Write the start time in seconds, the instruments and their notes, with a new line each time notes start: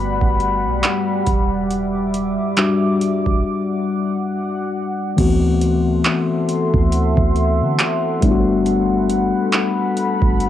Already playing: 808-style bass G1, ambient pad G3 F#5 B5, tine electric piano A3 B3 F#4
0.22 808-style bass G1, kick
0.40 closed hi-hat
0.66 808-style bass B1
0.83 clap, closed hi-hat
1.26 808-style bass E1, ambient pad E5 D6, kick, closed hi-hat
1.70 closed hi-hat
2.14 closed hi-hat
2.57 tine electric piano G3 D4 F#4, clap, closed hi-hat
3.01 ambient pad F#5, closed hi-hat
3.26 808-style bass E1, kick
5.16 808-style bass D2, tine electric piano E3 A3 B3 C4 F#4, ambient pad A4 E5 F#5 C6, kick, closed hi-hat, crash
5.62 closed hi-hat
6.04 clap, closed hi-hat
6.49 closed hi-hat
6.74 808-style bass D2, kick
6.92 closed hi-hat
7.17 808-style bass D2, kick
7.36 closed hi-hat
7.61 808-style bass D3
7.79 clap, closed hi-hat
8.21 808-style bass G1, tine electric piano G3 A3 B3 D4 E4, ambient pad A4 B5, kick, closed hi-hat
8.31 tine electric piano F#4
8.66 closed hi-hat
9.09 closed hi-hat
9.52 clap, closed hi-hat
9.97 closed hi-hat
10.22 808-style bass G1, kick
10.40 closed hi-hat